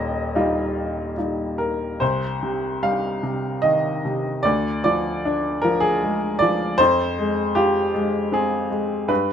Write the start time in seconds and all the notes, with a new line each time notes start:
Already playing: D#1 D#2 D#5
0.35 G3 D#4 F4
1.17 G3 D#4 F4
1.58 A#4
2.00 C2 C5
2.43 C3
2.83 G3 F5
3.23 C3
3.62 D#3 D#5
4.05 C3
4.43 D2 D5
4.84 F3 D5
5.25 D4
5.62 F3 A#4
5.80 G#4
6.03 G#3
6.39 F3 D5
6.78 F2 C5
7.19 G#3
7.55 F4 G4
7.94 G#3
8.32 C4 G#4
8.70 G#3
9.08 G2 B4